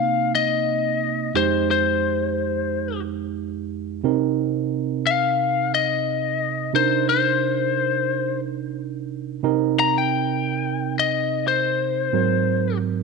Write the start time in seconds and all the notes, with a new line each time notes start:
Already playing: C3 A#3 C4 D#4 F5
0.35 D#5
1.34 F2 G#3 D#4 G4 C5
1.71 C5
4.04 C3 C4 D#4 A#4
5.07 F5
5.74 D#5
6.73 C3 D4 D#4 A#4 C5
7.09 C5
9.43 C3 C4 D#4 A#4
9.80 A#5
9.98 G5
10.99 D#5
11.48 C5
12.13 G#2 F#3 C4 A#4